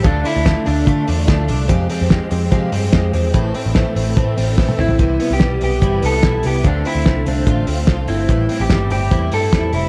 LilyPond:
<<
  \new Staff \with { instrumentName = "Clean electric guitar" } { \time 4/4 \key c \major \tempo 4 = 146 d'8 e'4 d'4 r4. | r1 | r2. r8 e'8~ | e'8. g'8. g'4 a'4 g'8 |
d'8 e'4 d'4 r4 e'8~ | e'8. g'8. g'4 a'4 e'8 | }
  \new Staff \with { instrumentName = "Clean electric guitar" } { \time 4/4 \key c \major d8 d'8 a8 d'8 a8 d'8 a8 d'8 | f,8 c'8 aes8 c'8 aes8 c'8 aes8 c'8 | a,8 c'8 a8 c'8 a8 c'8 a8 c'8 | c8 b8 g8 b8 e'8 b8 e'8 b8 |
d8 c'8 a8 c'8 f'8 c'8 f'8 c'8 | a,8 c'8 g8 c'8 e'8 c'8 e'8 c'8 | }
  \new Staff \with { instrumentName = "Twelve-string acoustic guitar" } { \time 4/4 \key c \major <d a d' f'>8 <a d' f'>8 <d a d' f'>8 <a d' f'>8 <d a d' f'>8 <a d' f'>8 <d a d' f'>8 <a d' f'>8 | <f, c f aes c' g'>8 <f aes c' g'>8 <f aes c' g'>8 <f aes c' g'>8 <f, c f aes c' g'>8 <f aes c' g'>8 <f aes c' g'>8 <f aes c' g'>8 | <a, e a c' e'>8 <a c' e'>8 <e a c' e'>8 <a c' e'>8 <a, e a c' e'>8 <a c' e'>8 <e a c' e'>8 <a c' e'>8 | <c e g b e'>8 <g b e'>8 <e g b e'>8 <g b e'>8 <c e g b e'>8 <g b e'>8 <e g b e'>8 <g b e'>8 |
<d a c' f'>8 <a c' f'>8 <d a c' f'>8 <a c' f'>8 <d a c' f'>8 <a c' f'>8 <d a c' f'>8 <a c' f'>8 | <a, e g c' e'>8 <g c' e'>8 <e g c' e'>8 <g c' e'>8 <a, e g c' e'>8 <g c' e'>8 <e g c' e'>8 <g c' e'>8 | }
  \new Staff \with { instrumentName = "Picked electric bass" } { \clef bass \time 4/4 \key c \major d,8 r16 d,8 r16 d,8 d8 e,8 d,8 c,8 | f,8 r16 f,8 r16 f,8 f8 g,8 f,8 e,8 | a,,8 r16 a,,8 r16 a,,8 a,8 a,,8. r16 a,,8 | c,8 r16 c,16 r8 b,,8 g,,8 c,8 r8 c,8 |
d,8 r16 d,16 c,8 c,8 a,,8 d,8 c,8 g,,8 | a,,8 r16 a,,16 g,,8 g,,8 e,8 g,8 e,8 f,,8 | }
  \new DrumStaff \with { instrumentName = "Drums" } \drummode { \time 4/4 <hh bd>8 hho8 <hh bd sn>8 hho8 <hh bd>8 hho8 <hh bd sn>8 hho8 | <hh bd>8 hho8 <hh bd sn>8 hho8 <hh bd>8 hho8 <hh bd sn>8 hho8 | <hh bd>8 hho8 <hh bd sn>8 hho8 <hh bd>8 hho8 <bd sn>16 tommh16 toml16 tomfh16 | <hh bd>8 hho8 <hh bd sn>8 hho8 <hh bd>8 hho8 <hh bd sn>8 hho8 |
<hh bd>8 hho8 <hh bd sn>8 hho8 <hh bd>8 hho8 <hh bd sn>8 hho8 | <hh bd>8 hho8 <hh bd sn>8 hho8 <hh bd>8 hho8 <hh bd sn>8 hho8 | }
>>